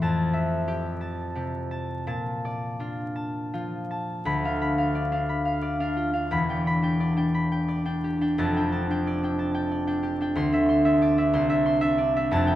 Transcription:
Already playing: G4 E5 C6
0.02 F2 A5
0.34 E5
0.68 G4
1.01 A5
1.35 C3 G4
1.71 A5
2.07 A#2 A5
2.45 D5
2.80 D4 F4
3.16 A5
3.54 F3 F4
3.91 A5
4.25 D2 B5
4.44 D4 F5
4.62 B5
4.78 D4 F5
4.95 D5
5.12 D4 F5
5.29 B5
5.45 F5
5.62 D5
5.80 D4 F5
5.97 F4
6.13 D4 F5
6.31 E1 E2 B5
6.49 D4 G5
6.67 B5
6.82 D4 G5
7.00 D5
7.17 D4 G5
7.35 B5
7.52 G5
7.68 D5
7.85 D4 G5
8.04 G4
8.21 D4 G5
8.38 F1 F2 A5
8.56 D4 G5
8.72 A5
8.90 D4 G5
9.07 D5
9.23 D4 G5
9.39 A5
9.54 G5
9.71 D5
9.87 D4 G5
10.03 G4
10.21 D4 G5
10.35 D2 C6
10.53 D4 E5
10.69 C6
10.85 D4 E5
11.02 D5
11.18 D4 E5
11.33 C2 C6
11.49 D4 E5
11.66 C6
11.81 D4 E5
11.98 D5
12.16 D4 E5
12.31 F1 F2 A5
12.47 G5

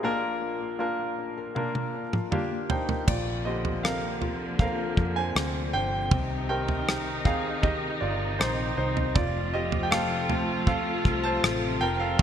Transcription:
Already playing: C4 D#4 G#4
0.03 A#1 A#2 A#3 D4 F4 A#4
0.23 A#3
0.42 D4
0.61 A#3
0.79 A#3 D4 F4 A#4
0.99 A#3
1.18 D4
1.38 A#4
1.55 A#2 A#3 D4 F4 A#4, high tom
1.75 A#3, high tom
1.94 D4
2.13 A#3, mid tom
2.31 A#3 D4 F4 G4 F5, mid tom
2.51 A#3
2.69 D4 D#4 C5 G5, floor tom
2.88 A#4, floor tom
3.07 A#1 A#2 C3 D3 F3 A#3 F4 D5, kick, floor tom, crash
3.45 D3 A#3 C4 D4 G4 D#5
3.65 floor tom
3.83 C4 A#4 F5, cross-stick
4.21 F4, floor tom
4.59 F3 A#4 F5, kick, floor tom
4.97 F2 D4, kick
5.16 C5 G#5
5.35 D2 C4, cross-stick
5.73 G1 D4 C5 G5
6.11 C2 C3 D#3 D#4, kick, floor tom
6.49 D#3 C4 D#4 G4 A#4 G5
6.68 floor tom
6.87 C4, cross-stick
7.25 G4 G#4 F5, kick, floor tom
7.62 D#3 G4 D#5, kick, floor tom
8.01 G1 D#4 F4 D5
8.39 A#1 C4 D#4 C5, cross-stick
8.77 C2 D#4 C5
8.97 floor tom
9.15 F1 F2 C3 F3 A3 F4 D5, kick, floor tom
9.53 C4 G4 D#5
9.72 floor tom
9.83 G5
9.91 A3 A4 F5, cross-stick
10.29 F3 A3 C4 F4, floor tom
10.67 F3 A4 F5, kick, floor tom
11.05 C2 C4, kick
11.24 C5 A5
11.43 A1 A3, cross-stick
11.81 F1 C4 A#4 G5
12.00 A4 F5
12.19 A#2 D3 A#3 D4 F5, kick

